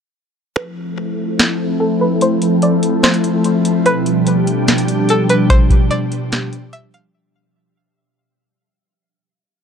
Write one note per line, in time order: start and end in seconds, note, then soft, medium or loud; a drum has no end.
0.56 7.10 F3 medium
0.56 3.82 A3 medium
0.56 3.82 C4 medium
0.56 3.82 E4 medium
0.56 3.82 A4 medium
0.56 1.76 B4 medium
1.40 snare loud
1.80 2.00 A4 medium
2.01 2.20 B4 medium
2.21 2.60 C5 loud
2.21 closed hi-hat medium
2.42 closed hi-hat medium
2.62 3.01 D5 medium
2.62 closed hi-hat medium
2.83 closed hi-hat medium
3.03 3.42 C5 medium
3.03 snare loud
3.03 closed hi-hat soft
3.14 closed hi-hat medium
3.24 closed hi-hat medium
3.44 closed hi-hat medium
3.65 closed hi-hat medium
3.86 7.11 B2 medium
3.86 7.11 G3 medium
3.86 7.11 D4 medium
3.86 7.11 G4 medium
3.86 5.05 B4 loud
3.86 closed hi-hat medium
4.06 closed hi-hat medium
4.27 closed hi-hat medium
4.47 closed hi-hat medium
4.68 snare loud
4.68 closed hi-hat soft
4.78 closed hi-hat medium
4.88 closed hi-hat medium
5.09 5.29 A4 medium
5.09 closed hi-hat medium
5.29 5.49 B4 medium
5.29 closed hi-hat medium
5.50 5.89 C5 loud
5.50 kick loud
5.50 closed hi-hat medium
5.70 kick medium
5.70 closed hi-hat medium
5.91 6.69 D5 medium
5.91 closed hi-hat medium
6.12 closed hi-hat medium
6.32 snare loud
6.32 closed hi-hat medium
6.53 closed hi-hat medium
6.73 6.93 E5 medium
6.73 closed hi-hat medium
6.94 7.13 F5 medium
6.94 closed hi-hat medium